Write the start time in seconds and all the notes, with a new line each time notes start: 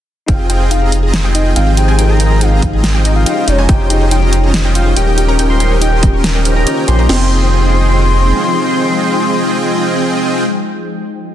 0.26 F1 F3 G#3 C4 D#4 F4 G#4 D#5 F5 G5, kick, closed hi-hat
0.30 C5
0.39 G4
0.50 C4 D#4 F4 G#4 D#5 G5, closed hi-hat
0.60 G#4
0.71 D#4 F5, closed hi-hat
0.82 C4 F4 G4 G#4 D#5 A#5
0.92 D#4, closed hi-hat
1.03 G#4
1.13 D#4, snare, closed hi-hat
1.24 C4 F4 G4 G#4 D#5 G5
1.35 D#4 D#5, closed hi-hat
1.46 G#4
1.56 G#1 C4 D#4 F4 G#4 D#5 F5 G5, closed hi-hat
1.67 G4
1.76 D#4 G4 G#4 C5 G5, closed hi-hat
1.88 C4 F4 G#4 D#5 G#5
1.97 C4 D#4 F4 G#4 D#5 G5, closed hi-hat
2.01 A#4
2.09 G4 A#5
2.20 C4 D#4 F4 G#4 D#5 G5, closed hi-hat
2.31 G#4
2.41 D#4 F5, closed hi-hat
2.52 C4 F4 G4 G#4 D#5 A#5
2.62 D#4, kick, closed hi-hat
2.73 G#4
2.84 D#4, snare, closed hi-hat
2.94 C4 F4 G4 G#4 D#5 G5
3.04 D#4 G4 G#4 D#5, closed hi-hat
3.16 G#4 F5
3.26 C#4 D#4 F4 C5 D#5 G5, closed hi-hat
3.37 G4
3.47 F1 D#4 F4 G4 C5 C#5, closed hi-hat
3.58 C#4 F4 G#4 C5 D#5 G#5
3.67 F1 D#4 F4 G4 G5, kick, closed hi-hat
3.71 C5
3.80 G4
3.90 C#4 D#4 F4 C5 D#5 G5, closed hi-hat
4.01 G#4
4.11 D#4 G5, closed hi-hat
4.22 C#4 F4 G4 C5 D#5 A#5
4.33 D#4, closed hi-hat
4.44 G#4
4.54 D#4, snare, closed hi-hat
4.65 C#4 F4 G4 C5 D#5 G5
4.75 D#4 F5, closed hi-hat
4.86 G#4
4.96 D#1 C#4 D#4 G4 A#4 D#5 G5, closed hi-hat
5.07 G4
5.17 D#3 A#3 C#4 D#4 F4 G4 A#4 G5, closed hi-hat
5.28 C#4 G4 A#4 C#5 D#5 A#5
5.37 C#4 D#4 F4 G4 A#4 D#5 G5, closed hi-hat
5.41 A#4
5.50 A#4 C6
5.60 C#4 D#4 G4 A#4 D#5 G5, closed hi-hat
5.71 C#5
5.82 D#4 G5, closed hi-hat
5.92 C#4 G4 A#4 D#5 C6
6.03 D#4, kick, closed hi-hat
6.14 C#5
6.24 D#4, snare, closed hi-hat
6.35 C#4 G4 A#4 D#5 G5
6.45 C#4 F4 G4 A#4 C5, closed hi-hat
6.56 D#4 A#5
6.67 C#4 G4 A#4 C#5 D#5 G5, closed hi-hat
6.77 C#5
6.87 A#1 C#4 F4 G4 C5 C#5 C6, closed hi-hat
6.99 C#4 D#4 G4 A#4 D#5 A#5
7.06 F1 F3 G#3 C4 D#4 F4 G#4 D#5 G5 C6, snare, crash
7.10 G#4 C5